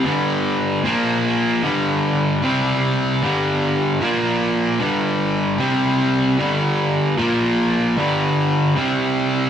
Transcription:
\new Staff \with { instrumentName = "Overdriven electric guitar" } { \clef bass \time 4/4 \key g \minor \tempo 4 = 151 <g, d g>2 <bes, f bes>2 | <g, d g>2 <c g c'>2 | <g, d g>2 <bes, f bes>2 | <g, d g>2 <c g c'>2 |
<g, d g>2 <bes, f bes>2 | <g, d g>2 <c g c'>2 | }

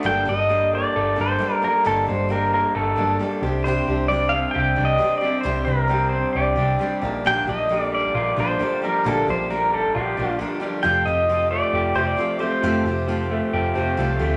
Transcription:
<<
  \new Staff \with { instrumentName = "Pedal steel guitar" } { \time 4/4 \key g \minor \tempo 4 = 134 g''8 ees''4 d''4 c''4 bes'8 | a'8 c''8 bes'8 bes'8 a'4 r4 | c''4 d''8 f''8 g''8. ees''8. d''8 | c''8 bes'4 c''8 d''4. r8 |
g''8 ees''4 d''4 c''4 bes'8 | a'8 c''8 bes'8 a'8 g'4 r4 | g''8 ees''4 d''4 c''16 d''8. c''8~ | c''2. r4 | }
  \new Staff \with { instrumentName = "Grand piano" } { \time 4/4 \key g \minor << { r1 | r1 | r1 | r1 |
r1 | r1 | r1 | r2 r8 a''16 f''16 d''4 | } \\ { <bes g' a'>4 <bes g' a'>8 <bes g' a'>8 <bes g' a'>4 <bes g' a'>4 | <bes g' a'>4 <bes g' a'>8 <bes g' a'>8 <bes g' a'>4 <bes g' a'>8 <d' g' c''>8~ | <d' g' c''>4 <d' g' c''>8 <d' g'>8 <d' g' c''>4 <d' g' c''>4 | <d' g' c''>4 <d' g' c''>8 <d' g'>8 <d' g' c''>4 <d' g' c''>8 <d' g' bes'>8~ |
<d' g' bes'>4 <d' g' bes'>8 <d' g' bes'>8 <d' g' bes'>4 <d' g' bes'>4 | <d' g' bes'>4 <d' g' bes'>8 <d' bes'>8 <d' g' bes'>4 <d' g' bes'>4 | <f' g' a'>4 <f' g' a'>8 <f' g' a'>8 <f' g' a'>4 <f' g' a'>4 | <f' g' a'>4 <f' g' a'>8 <f' g' a'>8 <f' g' a'>4 <f' g' a'>4 | } >> }
  \new Staff \with { instrumentName = "Steel-string acoustic guitar" } { \time 4/4 \key g \minor <g, d g bes d' a'>8 <g bes d' a'>8 <g bes d' a'>4. <g bes d' a'>8 <g bes d' a'>8 <g bes d' a'>8 | <g, d g bes d' a'>8 <g bes d' a'>8 <g bes d' a'>4. <g bes d' a'>8 <g bes d' a'>8 <c' d' g'>8 | <c g c' d' g'>8 <c' d' g'>8 <g c' d' g'>4. <c' d' g'>8 <g c' d' g'>8 <c' d' g'>8 | <c g c' d' g'>8 <c' d' g'>8 <g c' d' g'>4. <c' d' g'>8 <g c' d' g'>8 <f bes d' g'>8 |
<bes, d f bes d' g'>8 <f bes d' g'>8 <f bes d' g'>4. <f bes d' g'>8 <f bes d' g'>8 <f bes d' g'>8 | <bes, d f bes d' g'>8 <f bes d' g'>8 <f bes d' g'>4. <f bes d' g'>8 <f bes d' g'>8 <f bes d' g'>8 | <f a c' f' g'>8 <c' f' g'>8 <a c' f' g'>4. <c' f' g'>8 <a c' f' g'>8 <c' f' g'>8 | <f a c' f' g'>8 <c' f' g'>8 <a c' f' g'>4. <c' f' g'>8 <a c' f' g'>8 <c' f' g'>8 | }
  \new Staff \with { instrumentName = "Clean electric guitar" } { \clef bass \time 4/4 \key g \minor g,4 g8 bes8 a'8 d'8 g8 bes8 | g,4 g8 bes8 a'8 d'8 g8 c8 | c4 g8 c'8 g'8 d'8 g8 c'8 | c4 g8 c'8 g'8 d'8 g8 bes,8 |
bes,4 d8 g8 f'8 d'8 d8 g8 | bes,4 d8 g8 f'8 d'8 d8 g8 | f4 f8 a8 g'8 c'8 f8 a8 | f4 f8 a8 g'8 c'8 f8 a8 | }
  \new Staff \with { instrumentName = "Picked electric bass" } { \clef bass \time 4/4 \key g \minor g,,8 g,,4. g,,8 g,,8 r4 | g,,8 g,,4. g,,8 g,,8 r8 c,8~ | c,8 c,4. c,8 c,8 r4 | c,8 c,4. c,8 c,8 r8 bes,,8~ |
bes,,8 bes,,4. bes,,8 bes,,8 r4 | bes,,8 bes,,4. bes,,8 bes,,8 r4 | f,,8 f,,4. f,,8 f,,8 r4 | f,,8 f,,4. f,,8 f,,8 c,8 d,8 | }
>>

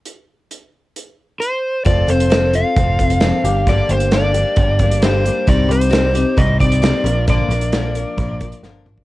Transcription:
<<
  \new Staff \with { instrumentName = "Electric slide guitar" } { \time 4/4 \key f \mixolydian \tempo 4 = 133 r2. c''4 | d''8 c''4 f''2~ f''8 | d''8 c''8 d''2 c''4 | d''8 c''4. ees''8 d''4. |
d''2. r4 | }
  \new Staff \with { instrumentName = "Steel-string acoustic guitar" } { \time 4/4 \key f \mixolydian r1 | <f c' f' a'>8 <c' f' a'>8 <f c' f' a'>8 <c' f' a'>8 <f c' f' a'>8 <c' f' a'>8 <f c' f' a'>8 <g bes d' g'>8 | <g, d g bes d' g'>8 <g bes d' g'>8 <g, d g bes d' g'>8 <g bes d' g'>8 <g bes d' g'>8 <g bes d' g'>8 <g, d g bes d' g'>8 <g bes d' g'>8 | <c g c' ees' g'>8 <c' ees' g'>8 <c g c' ees' g'>8 <c' ees' g'>8 <g c' ees' g'>8 <c' ees' g'>8 <c g c' ees' g'>8 <f bes d' bes'>8 |
<bes, d f bes d' bes'>8 <f bes d' bes'>8 <bes, d f bes d' bes'>8 <f bes d' bes'>8 <f bes d' bes'>8 <f bes d' bes'>8 <bes, d f bes d' bes'>8 <f bes d' bes'>8 | }
  \new Staff \with { instrumentName = "Picked electric bass" } { \clef bass \time 4/4 \key f \mixolydian r1 | f,,8 f,,4. f,,4. g,,8~ | g,,8 g,,4. g,,2 | c,8 c,4. c,4. bes,,8~ |
bes,,8 bes,,4. bes,,4 g,,8 a,,8 | }
  \new DrumStaff \with { instrumentName = "Drums" } \drummode { \time 4/4 hh4 hh4 hh4 hh4 | <hh bd>8 hh16 hh16 <hh sn>8 hh8 <hh bd>8 <hh bd>16 hh16 <hh sn>8 hh8 | <hh bd>8 hh16 hh16 <hh sn>8 hh8 <hh bd>8 <hh bd>16 hh16 <hh sn>8 hh8 | <hh bd>8 hh16 hh16 <hh sn>8 hh8 <hh bd>8 <hh bd>16 hh16 <hh sn>8 hh8 |
<hh bd>8 hh16 hh16 <hh sn>8 hh8 <hh bd>8 <hh bd>16 hh16 sn8 toml16 bd16 | }
>>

